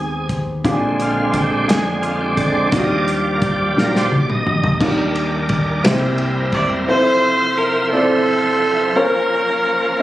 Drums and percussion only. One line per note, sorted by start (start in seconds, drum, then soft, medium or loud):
0.29 kick medium
0.29 closed hi-hat soft
0.65 kick loud
0.65 closed hi-hat medium
1.00 closed hi-hat soft
1.34 kick medium
1.34 closed hi-hat medium
1.69 snare loud
1.69 closed hi-hat medium
2.03 closed hi-hat soft
2.37 kick medium
2.37 closed hi-hat soft
2.72 kick loud
2.72 closed hi-hat medium
3.08 closed hi-hat soft
3.42 kick medium
3.42 closed hi-hat soft
3.78 snare medium
3.96 snare medium
4.12 high tom medium
4.30 mid tom medium
4.47 mid tom medium
4.64 floor tom loud
4.81 kick loud
4.81 crash medium
5.15 ride bell soft
5.49 kick medium
5.49 ride bell soft
5.85 snare loud
5.85 ride bell medium
6.18 ride bell soft
6.52 kick medium
6.52 ride bell soft